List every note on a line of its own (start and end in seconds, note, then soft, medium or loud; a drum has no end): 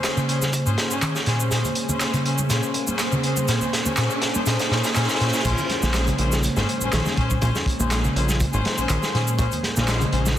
0.00 5.41 A#3 medium
0.00 0.26 C#4 medium
0.00 5.41 C#4 medium
0.00 0.26 G#4 medium
0.00 5.41 G#4 medium
0.00 0.26 C5 medium
0.00 5.41 C5 medium
0.00 snare loud
0.00 closed hi-hat medium
0.00 riser medium
0.04 clap loud
0.04 shaker medium
0.17 0.65 C#3 loud
0.17 shaker soft
0.28 0.40 C#4 medium
0.28 0.40 G#4 medium
0.28 0.40 C5 medium
0.28 closed hi-hat medium
0.42 snare soft
0.42 high conga medium
0.42 shaker medium
0.53 kick loud
0.53 closed hi-hat medium
0.53 shaker medium
0.66 0.75 G#2 medium
0.66 0.76 C#4 medium
0.66 0.76 G#4 medium
0.66 0.76 C5 loud
0.66 shaker soft
0.78 snare loud
0.78 closed hi-hat medium
0.91 1.24 C#4 loud
0.91 1.24 G#4 medium
0.91 1.24 C5 loud
0.91 shaker medium
1.02 1.15 D#3 medium
1.02 clap loud
1.02 closed hi-hat medium
1.02 shaker medium
1.15 snare soft
1.15 shaker soft
1.26 1.50 A#2 medium
1.26 1.38 C#4 loud
1.26 1.38 G#4 medium
1.26 1.38 C5 loud
1.26 snare soft
1.26 closed hi-hat medium
1.40 shaker medium
1.51 1.61 A#2 medium
1.51 1.63 C#4 medium
1.51 1.63 G#4 medium
1.51 1.63 C5 loud
1.51 snare soft
1.51 closed hi-hat medium
1.51 shaker medium
1.64 closed hi-hat soft
1.64 low conga medium
1.64 shaker soft
1.75 closed hi-hat medium
1.89 1.95 A#3 medium
1.89 2.23 C#4 medium
1.89 2.23 G#4 medium
1.89 2.23 C5 medium
1.89 low conga loud
1.89 shaker medium
2.00 snare medium
2.00 clap loud
2.00 closed hi-hat medium
2.00 shaker medium
2.14 2.48 C#3 medium
2.14 closed hi-hat soft
2.14 high conga medium
2.14 shaker soft
2.25 2.36 C#4 medium
2.25 2.37 G#4 medium
2.25 2.37 C5 medium
2.25 closed hi-hat medium
2.38 high conga medium
2.38 shaker medium
2.50 2.60 A#2 medium
2.50 2.61 C#4 medium
2.50 2.61 G#4 medium
2.50 2.61 C5 loud
2.50 snare medium
2.50 closed hi-hat medium
2.50 shaker medium
2.63 shaker soft
2.74 closed hi-hat medium
2.87 2.93 A#3 medium
2.87 3.21 C#4 medium
2.87 3.21 G#4 medium
2.87 3.21 C5 medium
2.87 high conga medium
2.87 shaker medium
2.99 snare medium
2.99 clap loud
2.99 closed hi-hat medium
2.99 shaker medium
3.12 3.46 C#3 medium
3.12 low conga medium
3.12 shaker soft
3.23 3.35 C#4 medium
3.23 3.35 G#4 medium
3.23 3.35 C5 medium
3.23 closed hi-hat medium
3.37 high conga medium
3.37 shaker medium
3.48 3.58 A#2 medium
3.48 3.59 C#4 loud
3.48 3.59 G#4 medium
3.48 3.59 C5 loud
3.48 snare medium
3.48 closed hi-hat medium
3.48 shaker medium
3.61 low conga medium
3.61 shaker soft
3.73 snare medium
3.73 closed hi-hat medium
3.86 3.91 A#3 medium
3.86 3.96 C#4 medium
3.86 3.96 G#4 medium
3.86 3.96 C5 medium
3.86 low conga medium
3.86 shaker medium
3.97 4.07 A#2 medium
3.97 4.09 C#4 medium
3.97 4.09 G#4 medium
3.97 4.09 C5 loud
3.97 snare medium
3.97 clap loud
3.97 closed hi-hat medium
3.97 shaker soft
4.10 shaker soft
4.21 snare medium
4.21 closed hi-hat medium
4.35 4.40 A#3 medium
4.35 4.45 C#4 medium
4.35 4.45 G#4 medium
4.35 4.45 C5 medium
4.35 high conga medium
4.35 shaker medium
4.46 4.56 A#2 medium
4.46 4.58 C#4 medium
4.46 4.58 G#4 medium
4.46 4.58 C5 loud
4.46 snare loud
4.46 closed hi-hat medium
4.46 shaker medium
4.59 snare medium
4.59 closed hi-hat medium
4.59 shaker soft
4.71 4.81 A#2 medium
4.71 4.82 C#4 loud
4.71 4.82 G#4 medium
4.71 4.82 C5 loud
4.71 snare medium
4.84 snare medium
4.84 closed hi-hat medium
4.84 shaker medium
4.95 5.06 A#2 medium
4.95 5.07 C#4 loud
4.95 5.07 G#4 medium
4.95 5.07 C5 loud
4.95 snare loud
4.95 clap loud
4.95 closed hi-hat medium
4.95 shaker medium
5.03 snare medium
5.09 snare medium
5.09 shaker soft
5.15 snare loud
5.20 5.30 A#2 medium
5.20 5.32 C#4 loud
5.20 5.32 G#4 medium
5.20 5.32 C5 loud
5.20 snare loud
5.20 closed hi-hat medium
5.27 snare medium
5.33 snare loud
5.33 shaker medium
5.39 snare medium
5.45 5.53 A#1 loud
5.45 5.55 A#2 medium
5.45 10.39 G#3 medium
5.45 10.39 A#3 medium
5.45 5.56 C#4 loud
5.45 9.38 C#4 medium
5.45 5.56 G#4 medium
5.45 5.56 C5 loud
5.45 10.39 C5 medium
5.45 kick loud
5.45 closed hi-hat medium
5.45 crash medium
5.45 shaker medium
5.58 closed hi-hat soft
5.58 low conga medium
5.58 shaker soft
5.70 snare soft
5.70 closed hi-hat medium
5.83 6.12 A#1 loud
5.83 5.88 A#3 medium
5.83 6.16 C#4 medium
5.83 6.16 G#4 medium
5.83 6.16 C5 loud
5.83 snare medium
5.83 low conga medium
5.83 shaker medium
5.94 snare loud
5.94 clap loud
5.94 closed hi-hat medium
5.94 shaker medium
6.07 6.55 C#3 loud
6.07 closed hi-hat soft
6.07 high conga medium
6.07 shaker soft
6.18 6.49 A#1 medium
6.18 6.30 C#4 medium
6.18 6.30 G#4 medium
6.18 6.30 C5 loud
6.18 closed hi-hat medium
6.32 snare soft
6.32 high conga medium
6.32 shaker medium
6.43 closed hi-hat medium
6.43 shaker medium
6.56 6.64 G#1 loud
6.56 6.65 G#2 medium
6.56 6.66 C#4 loud
6.56 6.66 G#4 medium
6.56 6.66 C5 loud
6.56 snare soft
6.56 shaker soft
6.69 closed hi-hat medium
6.81 6.90 A#1 soft
6.81 7.15 C#4 loud
6.81 7.14 G#4 medium
6.81 7.14 C5 loud
6.81 high conga medium
6.81 shaker medium
6.93 7.01 A#1 medium
6.93 7.05 D#3 medium
6.93 snare loud
6.93 clap loud
6.93 closed hi-hat medium
6.93 shaker medium
7.06 snare medium
7.06 low conga medium
7.06 shaker soft
7.17 7.41 A#2 loud
7.17 7.28 C#4 loud
7.17 7.28 G#4 medium
7.17 7.28 C5 loud
7.17 kick loud
7.17 closed hi-hat medium
7.31 kick loud
7.31 high conga medium
7.31 shaker medium
7.42 7.50 A#1 loud
7.42 7.51 A#2 medium
7.42 7.53 C#4 loud
7.42 7.53 G#4 medium
7.42 7.53 C5 loud
7.42 kick loud
7.42 closed hi-hat medium
7.42 shaker medium
7.55 snare soft
7.55 low conga medium
7.55 shaker soft
7.66 kick loud
7.66 closed hi-hat medium
7.80 8.09 A#1 medium
7.80 7.85 A#3 medium
7.80 8.13 C#4 medium
7.80 8.13 G#4 medium
7.80 8.13 C5 loud
7.80 low conga medium
7.80 shaker medium
7.91 snare loud
7.91 clap loud
7.91 closed hi-hat medium
7.91 shaker medium
8.04 8.52 C#3 loud
8.04 shaker soft
8.16 8.46 A#1 medium
8.16 8.27 C#4 medium
8.16 8.27 G#4 medium
8.16 8.27 C5 loud
8.16 closed hi-hat medium
8.29 snare soft
8.29 high conga medium
8.29 shaker medium
8.40 kick loud
8.40 closed hi-hat medium
8.40 shaker medium
8.53 8.61 G#1 loud
8.53 8.62 G#2 medium
8.53 8.63 C#4 loud
8.53 8.63 G#4 medium
8.53 8.63 C5 loud
8.53 shaker soft
8.65 snare loud
8.65 closed hi-hat medium
8.78 8.87 A#1 soft
8.78 9.11 C#4 loud
8.78 9.11 G#4 medium
8.78 9.11 C5 loud
8.78 shaker medium
8.89 8.98 A#1 medium
8.89 9.02 D#3 medium
8.89 clap loud
8.89 closed hi-hat medium
8.89 shaker medium
9.03 snare medium
9.03 shaker soft
9.14 9.38 A#2 loud
9.14 9.25 C#4 loud
9.14 9.25 G#4 medium
9.14 9.25 C5 loud
9.14 snare soft
9.14 closed hi-hat medium
9.28 shaker medium
9.38 9.47 A#1 loud
9.38 9.49 A#2 medium
9.38 9.50 C#4 loud
9.38 9.50 G#4 medium
9.38 9.50 C5 loud
9.38 10.39 D#5 medium
9.38 kick loud
9.38 closed hi-hat medium
9.38 shaker medium
9.52 closed hi-hat soft
9.52 low conga medium
9.52 shaker soft
9.63 snare soft
9.63 closed hi-hat medium
9.76 10.06 A#1 medium
9.76 9.82 A#3 medium
9.76 10.10 C#4 medium
9.76 10.10 G#4 medium
9.76 10.10 C5 loud
9.76 snare soft
9.76 low conga medium
9.76 shaker medium
9.88 snare loud
9.88 clap loud
9.88 closed hi-hat medium
9.88 shaker medium
10.01 10.39 C#3 loud
10.01 closed hi-hat soft
10.01 high conga medium
10.01 shaker soft
10.12 10.39 A#1 medium
10.12 10.24 C#4 medium
10.12 10.24 G#4 medium
10.12 10.24 C5 loud
10.12 closed hi-hat medium
10.26 snare soft
10.26 high conga medium
10.26 shaker medium